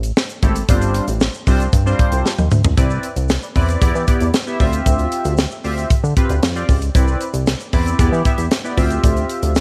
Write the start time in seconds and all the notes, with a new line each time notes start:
Already playing: A1
0.03 closed hi-hat, shaker
0.17 snare, shaker
0.29 closed hi-hat, shaker
0.42 G#1 A3 C4 E4 G4 A4, kick, closed hi-hat, shaker
0.56 closed hi-hat, shaker
0.68 G1 G3 C4 D4 F4 C5, kick, closed hi-hat, shaker
0.82 closed hi-hat, shaker
0.94 closed hi-hat, shaker
1.08 A1, closed hi-hat, shaker
1.20 snare, shaker
1.34 shaker
1.47 C2 G3 C4 D4 F4 C5, kick, open hi-hat, shaker
1.60 closed hi-hat, shaker
1.73 G2, kick, closed hi-hat, shaker
1.86 G3 C4 D4 F4 C5, shaker
1.99 kick, closed hi-hat
2.12 C2, closed hi-hat, shaker
2.26 snare, shaker
2.38 D#2, high tom, shaker
2.51 D2, mid tom, shaker
2.64 C#2, floor tom, shaker
2.77 C2 C4 E4 B4 D5, kick, closed hi-hat, shaker
2.90 shaker
3.03 closed hi-hat, shaker
3.16 C2, closed hi-hat, shaker
3.29 snare, closed hi-hat, shaker
3.42 B4 D5, closed hi-hat, shaker
3.55 E2 C4 E4 B4 D5, kick, open hi-hat, shaker
3.69 closed hi-hat, shaker
3.81 E2 B3 E4 G4 D5, kick, closed hi-hat, shaker
3.95 E3, shaker
4.07 B3 E4 G4 D5, kick, closed hi-hat, shaker
4.20 E2, closed hi-hat, shaker
4.34 snare, closed hi-hat, shaker
4.47 B3 E4 G4 E5, shaker
4.60 D2 C4 F4 G4 E5, kick, open hi-hat, shaker
4.73 closed hi-hat, shaker
4.86 D2, kick, closed hi-hat, shaker
4.99 closed hi-hat, shaker
5.12 closed hi-hat, shaker
5.25 D2, closed hi-hat, shaker
5.37 snare, closed hi-hat, shaker
5.51 G4 E5, shaker
5.64 D2 C4 F4 G4 E5, open hi-hat, shaker
5.78 closed hi-hat, shaker
5.90 D3, kick, closed hi-hat, shaker
6.04 D3, shaker
6.16 C4 F4 G4 B4, kick, closed hi-hat, shaker
6.29 D2, closed hi-hat, shaker
6.43 F2, snare, closed hi-hat, shaker
6.55 C4 F4 G4 D5, closed hi-hat, shaker
6.69 C#2, kick, open hi-hat, shaker
6.82 closed hi-hat, shaker
6.95 C2 C4 E4 B4 D5, kick, closed hi-hat, shaker
7.08 shaker
7.21 closed hi-hat, shaker
7.34 C2, closed hi-hat, shaker
7.47 snare, closed hi-hat, shaker
7.60 B4 D5, closed hi-hat, shaker
7.73 E2 C4 E4 B4 D5, kick, open hi-hat, shaker
7.86 closed hi-hat, shaker
7.99 E2 B3 E4 G4 D5, kick, closed hi-hat, shaker
8.12 E3, shaker
8.25 B3 E4 G4 E5, kick, closed hi-hat, shaker
8.38 E2, closed hi-hat, shaker
8.51 snare, closed hi-hat, shaker
8.64 B3 E4 G4 D5, shaker
8.77 D2 C4 F4 G4 E5, kick, open hi-hat, shaker
8.90 closed hi-hat, shaker
9.04 D2, kick, closed hi-hat, shaker
9.17 closed hi-hat, shaker
9.29 closed hi-hat, shaker
9.43 D2, closed hi-hat, shaker
9.55 snare, closed hi-hat, shaker